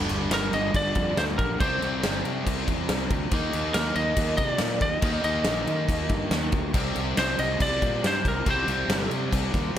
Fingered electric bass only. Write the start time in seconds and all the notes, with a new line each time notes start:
0.09 G1
0.31 G1
0.53 G1
0.74 G1
0.96 F2
1.17 D2
1.39 A#1
1.60 C2
1.82 C2
2.03 G1
2.25 C3
2.46 C2
2.68 E2
2.89 C2
3.10 D2
3.32 D#2
3.54 D#2
3.75 D#2
3.95 D#2
4.17 D#2
4.38 C3
4.60 A#2
4.81 D#2
5.02 D#2
5.24 D#2
5.45 A#1
5.67 D#3
5.88 D#2
6.10 G2
6.31 D#2
6.52 D2
6.74 C2
6.96 C2
7.18 C2
7.39 C2
7.60 C2
7.82 A#2
8.04 G2
8.25 C2
8.46 C2
8.68 C2
8.88 G1
9.10 C3
9.32 C2
9.54 D#2
9.75 C2